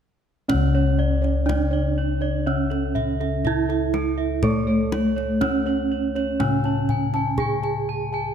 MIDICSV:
0, 0, Header, 1, 7, 480
1, 0, Start_track
1, 0, Tempo, 983607
1, 242, Time_signature, 4, 2, 24, 8
1, 4072, End_track
2, 0, Start_track
2, 0, Title_t, "Bronze metallophone"
2, 0, Program_c, 0, 11
2, 245, Note_on_c, 0, 73, 60
2, 355, Note_off_c, 0, 73, 0
2, 365, Note_on_c, 0, 73, 59
2, 475, Note_off_c, 0, 73, 0
2, 483, Note_on_c, 0, 74, 62
2, 594, Note_off_c, 0, 74, 0
2, 607, Note_on_c, 0, 74, 43
2, 716, Note_off_c, 0, 74, 0
2, 725, Note_on_c, 0, 74, 56
2, 835, Note_off_c, 0, 74, 0
2, 844, Note_on_c, 0, 74, 60
2, 954, Note_off_c, 0, 74, 0
2, 966, Note_on_c, 0, 73, 51
2, 1075, Note_off_c, 0, 73, 0
2, 1082, Note_on_c, 0, 74, 60
2, 1193, Note_off_c, 0, 74, 0
2, 1203, Note_on_c, 0, 73, 46
2, 1314, Note_off_c, 0, 73, 0
2, 1319, Note_on_c, 0, 73, 53
2, 1432, Note_off_c, 0, 73, 0
2, 1440, Note_on_c, 0, 76, 59
2, 1553, Note_off_c, 0, 76, 0
2, 1564, Note_on_c, 0, 76, 45
2, 1675, Note_off_c, 0, 76, 0
2, 1684, Note_on_c, 0, 76, 61
2, 1794, Note_off_c, 0, 76, 0
2, 1804, Note_on_c, 0, 76, 49
2, 1914, Note_off_c, 0, 76, 0
2, 1922, Note_on_c, 0, 69, 52
2, 2033, Note_off_c, 0, 69, 0
2, 2038, Note_on_c, 0, 76, 51
2, 2151, Note_off_c, 0, 76, 0
2, 2160, Note_on_c, 0, 69, 60
2, 2272, Note_off_c, 0, 69, 0
2, 2280, Note_on_c, 0, 69, 54
2, 2392, Note_off_c, 0, 69, 0
2, 2402, Note_on_c, 0, 73, 52
2, 2513, Note_off_c, 0, 73, 0
2, 2519, Note_on_c, 0, 73, 47
2, 2632, Note_off_c, 0, 73, 0
2, 2645, Note_on_c, 0, 73, 60
2, 2755, Note_off_c, 0, 73, 0
2, 2766, Note_on_c, 0, 73, 50
2, 2875, Note_off_c, 0, 73, 0
2, 2887, Note_on_c, 0, 73, 52
2, 2996, Note_off_c, 0, 73, 0
2, 3007, Note_on_c, 0, 73, 56
2, 3116, Note_off_c, 0, 73, 0
2, 3125, Note_on_c, 0, 73, 52
2, 3235, Note_off_c, 0, 73, 0
2, 3248, Note_on_c, 0, 73, 55
2, 3356, Note_off_c, 0, 73, 0
2, 3369, Note_on_c, 0, 80, 55
2, 3477, Note_off_c, 0, 80, 0
2, 3493, Note_on_c, 0, 80, 49
2, 3599, Note_off_c, 0, 80, 0
2, 3611, Note_on_c, 0, 80, 62
2, 3718, Note_off_c, 0, 80, 0
2, 3729, Note_on_c, 0, 80, 50
2, 3837, Note_off_c, 0, 80, 0
2, 3850, Note_on_c, 0, 81, 55
2, 3958, Note_off_c, 0, 81, 0
2, 3971, Note_on_c, 0, 80, 52
2, 4072, Note_off_c, 0, 80, 0
2, 4072, End_track
3, 0, Start_track
3, 0, Title_t, "Kettle gongs"
3, 0, Program_c, 1, 14
3, 237, Note_on_c, 1, 74, 56
3, 364, Note_on_c, 1, 73, 69
3, 373, Note_off_c, 1, 74, 0
3, 480, Note_on_c, 1, 74, 62
3, 497, Note_off_c, 1, 73, 0
3, 594, Note_on_c, 1, 73, 59
3, 615, Note_off_c, 1, 74, 0
3, 715, Note_on_c, 1, 74, 59
3, 732, Note_off_c, 1, 73, 0
3, 833, Note_on_c, 1, 73, 65
3, 852, Note_off_c, 1, 74, 0
3, 971, Note_off_c, 1, 73, 0
3, 1078, Note_on_c, 1, 73, 61
3, 1203, Note_on_c, 1, 76, 57
3, 1214, Note_off_c, 1, 73, 0
3, 1321, Note_on_c, 1, 69, 48
3, 1336, Note_off_c, 1, 76, 0
3, 1440, Note_on_c, 1, 76, 65
3, 1455, Note_off_c, 1, 69, 0
3, 1564, Note_on_c, 1, 69, 52
3, 1574, Note_off_c, 1, 76, 0
3, 1682, Note_on_c, 1, 76, 60
3, 1697, Note_off_c, 1, 69, 0
3, 1800, Note_on_c, 1, 69, 62
3, 1816, Note_off_c, 1, 76, 0
3, 1935, Note_off_c, 1, 69, 0
3, 2039, Note_on_c, 1, 69, 51
3, 2165, Note_on_c, 1, 73, 52
3, 2174, Note_off_c, 1, 69, 0
3, 2277, Note_off_c, 1, 73, 0
3, 2283, Note_on_c, 1, 73, 70
3, 2401, Note_off_c, 1, 73, 0
3, 2406, Note_on_c, 1, 73, 53
3, 2515, Note_off_c, 1, 73, 0
3, 2521, Note_on_c, 1, 73, 54
3, 2635, Note_off_c, 1, 73, 0
3, 2641, Note_on_c, 1, 73, 59
3, 2756, Note_off_c, 1, 73, 0
3, 2761, Note_on_c, 1, 73, 69
3, 2895, Note_off_c, 1, 73, 0
3, 3004, Note_on_c, 1, 73, 66
3, 3125, Note_on_c, 1, 80, 66
3, 3137, Note_off_c, 1, 73, 0
3, 3243, Note_on_c, 1, 81, 53
3, 3257, Note_off_c, 1, 80, 0
3, 3365, Note_on_c, 1, 80, 63
3, 3376, Note_off_c, 1, 81, 0
3, 3485, Note_on_c, 1, 81, 66
3, 3497, Note_off_c, 1, 80, 0
3, 3604, Note_on_c, 1, 80, 52
3, 3617, Note_off_c, 1, 81, 0
3, 3722, Note_on_c, 1, 81, 54
3, 3737, Note_off_c, 1, 80, 0
3, 3856, Note_off_c, 1, 81, 0
3, 3966, Note_on_c, 1, 81, 57
3, 4072, Note_off_c, 1, 81, 0
3, 4072, End_track
4, 0, Start_track
4, 0, Title_t, "Kettle gongs"
4, 0, Program_c, 2, 14
4, 236, Note_on_c, 2, 61, 59
4, 263, Note_on_c, 2, 37, 89
4, 718, Note_on_c, 2, 62, 35
4, 758, Note_off_c, 2, 62, 0
4, 1659, Note_off_c, 2, 61, 0
4, 1679, Note_on_c, 2, 62, 39
4, 1718, Note_off_c, 2, 62, 0
4, 2162, Note_on_c, 2, 69, 65
4, 2642, Note_on_c, 2, 62, 40
4, 2681, Note_off_c, 2, 62, 0
4, 3113, Note_off_c, 2, 37, 0
4, 3123, Note_on_c, 2, 45, 56
4, 3582, Note_off_c, 2, 69, 0
4, 3605, Note_on_c, 2, 62, 42
4, 3644, Note_off_c, 2, 62, 0
4, 4072, Note_off_c, 2, 45, 0
4, 4072, End_track
5, 0, Start_track
5, 0, Title_t, "Bronze metallophone"
5, 0, Program_c, 3, 11
5, 238, Note_on_c, 3, 61, 74
5, 712, Note_on_c, 3, 62, 70
5, 720, Note_off_c, 3, 61, 0
5, 1197, Note_off_c, 3, 62, 0
5, 1206, Note_on_c, 3, 61, 68
5, 1684, Note_off_c, 3, 61, 0
5, 1693, Note_on_c, 3, 64, 81
5, 2165, Note_on_c, 3, 57, 71
5, 2167, Note_off_c, 3, 64, 0
5, 2640, Note_on_c, 3, 61, 91
5, 2643, Note_off_c, 3, 57, 0
5, 3117, Note_off_c, 3, 61, 0
5, 3122, Note_on_c, 3, 61, 65
5, 3601, Note_on_c, 3, 68, 75
5, 3602, Note_off_c, 3, 61, 0
5, 4072, Note_off_c, 3, 68, 0
5, 4072, End_track
6, 0, Start_track
6, 0, Title_t, "Bronze metallophone"
6, 0, Program_c, 4, 11
6, 250, Note_on_c, 4, 49, 68
6, 1198, Note_off_c, 4, 49, 0
6, 1204, Note_on_c, 4, 49, 53
6, 2163, Note_off_c, 4, 49, 0
6, 2170, Note_on_c, 4, 57, 73
6, 3124, Note_on_c, 4, 49, 65
6, 3126, Note_off_c, 4, 57, 0
6, 4072, Note_off_c, 4, 49, 0
6, 4072, End_track
7, 0, Start_track
7, 0, Title_t, "Kendang"
7, 241, Note_on_c, 9, 63, 45
7, 241, Note_on_c, 9, 64, 66
7, 290, Note_off_c, 9, 63, 0
7, 290, Note_off_c, 9, 64, 0
7, 606, Note_on_c, 9, 62, 23
7, 655, Note_off_c, 9, 62, 0
7, 728, Note_on_c, 9, 63, 46
7, 728, Note_on_c, 9, 64, 44
7, 777, Note_off_c, 9, 63, 0
7, 777, Note_off_c, 9, 64, 0
7, 1324, Note_on_c, 9, 62, 18
7, 1373, Note_off_c, 9, 62, 0
7, 1443, Note_on_c, 9, 64, 45
7, 1492, Note_off_c, 9, 64, 0
7, 1566, Note_on_c, 9, 62, 18
7, 1615, Note_off_c, 9, 62, 0
7, 1682, Note_on_c, 9, 64, 46
7, 1731, Note_off_c, 9, 64, 0
7, 1804, Note_on_c, 9, 62, 20
7, 1853, Note_off_c, 9, 62, 0
7, 1921, Note_on_c, 9, 63, 50
7, 1970, Note_off_c, 9, 63, 0
7, 2160, Note_on_c, 9, 64, 71
7, 2209, Note_off_c, 9, 64, 0
7, 2403, Note_on_c, 9, 63, 52
7, 2451, Note_off_c, 9, 63, 0
7, 2527, Note_on_c, 9, 62, 19
7, 2576, Note_off_c, 9, 62, 0
7, 2642, Note_on_c, 9, 63, 53
7, 2642, Note_on_c, 9, 64, 53
7, 2691, Note_off_c, 9, 63, 0
7, 2691, Note_off_c, 9, 64, 0
7, 3007, Note_on_c, 9, 62, 18
7, 3056, Note_off_c, 9, 62, 0
7, 3123, Note_on_c, 9, 63, 53
7, 3172, Note_off_c, 9, 63, 0
7, 3240, Note_on_c, 9, 62, 18
7, 3289, Note_off_c, 9, 62, 0
7, 3362, Note_on_c, 9, 64, 45
7, 3411, Note_off_c, 9, 64, 0
7, 3483, Note_on_c, 9, 62, 22
7, 3532, Note_off_c, 9, 62, 0
7, 3600, Note_on_c, 9, 64, 61
7, 3649, Note_off_c, 9, 64, 0
7, 3725, Note_on_c, 9, 62, 18
7, 3774, Note_off_c, 9, 62, 0
7, 4072, End_track
0, 0, End_of_file